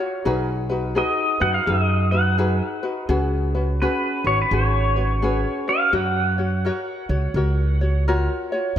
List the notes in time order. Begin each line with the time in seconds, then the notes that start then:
Already playing: C#5
0.00 F4 F#4
0.25 B1 D#4 F#4 G#4 B4
0.70 D#4 F#4 B4
0.95 D#4 F#4 G#4 B4 D#5
1.40 F#2 D#4 F#4 B4 F#5
1.54 F5
1.66 F#2 D#4 F#4 G#4 B4 E5
1.84 D#5
2.11 D#4 F#4 B4 F#5
2.38 D#4 F#4 G#4 B4
2.83 D#4 F#4 B4
3.09 C#2 C#4 F#4 G#4 B4
3.55 C#4 F#4 B4
3.82 C#4 F#4 G#4 B4
4.24 G#1 C#4 F#4 B4 C#5
4.42 B4
4.51 G#1 C#4 F#4 G#4 B4 C#5
4.96 C#4 F#4 B4
5.22 C#4 F#4 G#4 B4
5.68 C#4 F#4 B4 F5
5.92 F#2 F#4 A#4 C#5 F#5
6.38 F#4 C#5
6.65 F#4 A#4 C#5
7.09 C#2 F#4 C#5
7.34 C#2 F#4 A#4 C#5
7.81 F#4 C#5
8.08 F4 F#4 A#4 C#5
8.52 F4 F#4 C#5